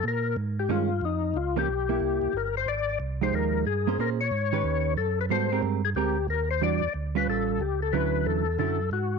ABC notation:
X:1
M:4/4
L:1/8
Q:"Swing" 1/4=182
K:Bbmix
V:1 name="Tonewheel organ"
B2 z G F2 E2 | F G4- G B c | d2 z c B2 A2 | B _d4- d =A =B |
c2 z A G2 B c | d2 z =B =A2 G A | =B2 =A2 A2 ^F2 |]
V:2 name="Hollow-body jazz guitar"
z4 [E,A,_D] z3 | z [F,B,_D] z [B,=E]3 z2 | z3 [F,A,EG]3 z [B,_DAc] | [B,_DAc] z2 [E,DG=B]3 z2 |
[G,=B,_G=A] [_A,C=G_B]2 z [A,CGB] z3 | [=E,G,D^F] z2 [G,_D=F]3 z2 | [D,^F,^C=E]3 z [D,F,CE] z3 |]
V:3 name="Tonewheel organ" clef=bass
B,,2 A,,2 G,,2 F,,2 | _D,,2 =B,,,2 C,, C,, G,,,2 | A,,,2 C,,2 E,,2 G,,2 | B,,2 A,,2 E,,2 ^F,,2 |
A,,2 G,,2 D,,2 E,,2 | =E,, E,, D,,2 =A,,,2 ^C,,2 | D,,2 =E,,2 ^F,,2 A,,2 |]